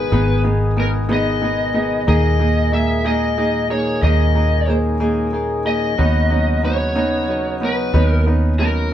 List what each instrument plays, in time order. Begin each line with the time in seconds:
Already playing: tonewheel organ B2 D#3 G#3 G#4, clean electric guitar G#3 B3 D#4 B4, lead electric guitar B4
0.12 fingered electric bass G#1, clean electric guitar G#2 D#3 G#3 B3 D#4 B4, felt piano B3 D#4 G#4
0.44 clean electric guitar G#3 B3 D#4 B4, felt piano B3 D#4 G#4
0.77 clean electric guitar G#3 B3 D#4, felt piano B3 D#4 G#4, lead electric guitar A#4
1.09 clean electric guitar G#2 D#3 G#3 B3 D#4 B4, felt piano B3 D#4 G#4
1.13 lead electric guitar D#5
1.42 clean electric guitar G#3 B3 D#4 B4, felt piano B3 D#4 G#4
1.74 clean electric guitar G#3 B3 D#4 B4, felt piano B3 D#4 G#4
2.07 fingered electric bass D#2, tonewheel organ A#2 D#3 G#4, clean electric guitar D#3 G#3 D#4 G#4 A#4, felt piano A#3 D#4 G#4, lead electric guitar D#5
2.39 felt piano A#3 D#4 G#4, clean electric guitar D#4 G#4 A#4
2.72 clean electric guitar G#3 G#4 A#4, felt piano A#3 D#4 G#4, lead electric guitar E5
3.04 clean electric guitar D#3 G#3 D#4 G#4 A#4, felt piano A#3 D#4 G#4, lead electric guitar D#5
3.38 clean electric guitar G#3 D#4 G#4 A#4, felt piano A#3 D#4 G#4
3.70 felt piano A#3 D#4 G#4, clean electric guitar D#4 G#4 A#4, lead electric guitar C#5
4.02 fingered electric bass D#2, clean electric guitar D#3 G#3 D#4 G#4 A#4, felt piano A#3 D#4 G#4, tonewheel organ C#4, lead electric guitar D#5
4.35 felt piano A#3 D#4 G#4, clean electric guitar D#4 G#4 A#4
4.67 clean electric guitar G#3 D#4 G#4 A#4, felt piano A#3 D#4 G#4
5.00 clean electric guitar D#3 G#3 D#4 G#4 A#4, felt piano A#3 D#4 G#4
5.33 clean electric guitar G#3 D#4 G#4 A#4, felt piano D#4 G#4
5.65 felt piano A#3 D#4 G#4, clean electric guitar D#4 G#4 A#4, lead electric guitar D#5
5.98 fingered electric bass D#2, tonewheel organ C#3 F#3 B3 D#4 F#4, clean electric guitar D#3 F#3 C#4 D#4 B4, felt piano B3 C#4 D#4
6.30 felt piano B3 C#4 D#4, clean electric guitar C#4 D#4 B4
6.62 clean electric guitar F#3 C#4 D#4 B4, felt piano B3 C#4 D#4, lead electric guitar C#5
6.96 clean electric guitar D#3 F#3 C#4 D#4 B4, felt piano B3 C#4 D#4
7.28 clean electric guitar F#3 C#4 D#4 B4, felt piano C#4 D#4
7.61 felt piano B3 C#4 D#4, clean electric guitar C#4 D#4 B4, lead electric guitar B4
7.93 fingered electric bass D#2, clean electric guitar D#3 F#3 C#4 D#4 B4, felt piano B3 C#4 D#4
8.07 lead electric guitar A#4
8.26 felt piano B3 C#4 D#4, clean electric guitar C#4 D#4 B4
8.59 clean electric guitar F#3 C#4 D#4, felt piano B3 C#4 D#4, lead electric guitar A#4